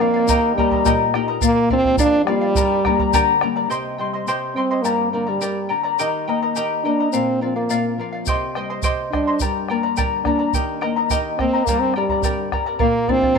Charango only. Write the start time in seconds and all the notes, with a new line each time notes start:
0.00 A#4 D5 F5
0.14 D5 F5
0.29 G4 A#4 D#5 G5 A#5
0.58 A#4 D#5 G5 A#5
0.71 A#4 D#5 A#5
0.85 G4 A#4 D#5 G5 A#5
1.15 A#4 D#5 G5 A#5
1.28 A#4 D#5 A#5
1.41 A#4 D5 F5
1.70 A#4 D5 F5
1.84 D5 F5
1.98 A#4 D5 F5
2.27 A#4 D5 F5
2.41 D5 F5
2.56 G4 A#4 D5 G5 A#5
2.85 A#4 D5 G5 A#5
3.00 A#4 D5 A#5
3.13 G4 A#4 D5 G5 A#5
3.42 A#4 D5 G5 A#5
3.56 A#4 D5 A#5
3.70 G4 C5 D#5 G5 C6
3.98 C5 D#5 G5 C6
4.13 C5 D#5 C6
4.28 G4 C5 D#5 G5 C6
4.56 C5 D#5 G5 C6
4.71 C5 D#5 C6
4.84 G4 A#4 D5 G5 A#5
5.13 A#4 D5 G5 A#5
5.27 A#4 D5 A#5
5.41 G4 A#4 D5 G5 A#5
5.69 A#4 D5 G5 A#5
5.83 A#4 D5 A#5
5.99 G4 A#4 D#5 G5 A#5
6.28 A#4 D#5 G5 A#5
6.42 A#4 D#5 A#5
6.56 G4 A#4 D#5 G5 A#5
6.85 A#4 D#5 G5 A#5
7.00 A#4 D#5 A#5
7.13 A#4 D5 F5
7.41 A#4 D5 F5
7.56 D5 F5
7.70 A#4 D5 F5
7.99 A#4 D5 F5
8.12 D5 F5
8.27 G4 C5 D#5 G5 C6
8.56 C5 D#5 G5 C6
8.70 C5 D#5 C6
8.84 G4 C5 D#5 G5 C6
9.12 C5 D#5 G5 C6
9.27 C5 D#5 C6
9.41 G4 A#4 D5 G5 A#5
9.70 A#4 D5 G5 A#5
9.83 A#4 D5 A#5
9.97 G4 A#4 D5 G5 A#5
10.25 A#4 D5 G5 A#5
10.39 A#4 D5 A#5
10.54 G4 A#4 D#5 G5 A#5
10.81 A#4 D#5 G5 A#5
10.96 A#4 D#5 A#5
11.11 G4 A#4 D#5 G5 A#5
11.39 A#4 D#5 G5 A#5
11.53 A#4 D#5 A#5
11.68 G4 A#4 D5 G5 A#5
11.96 A#4 D5 G5 A#5
12.10 A#4 D5 A#5
12.23 G4 A#4 D5 G5 A#5
12.52 A#4 D5 G5 A#5
12.66 A#4 D5 A#5
12.79 A#4 D5 F5
13.08 A#4 D5 F5
13.21 D5 F5
13.35 A#4 F5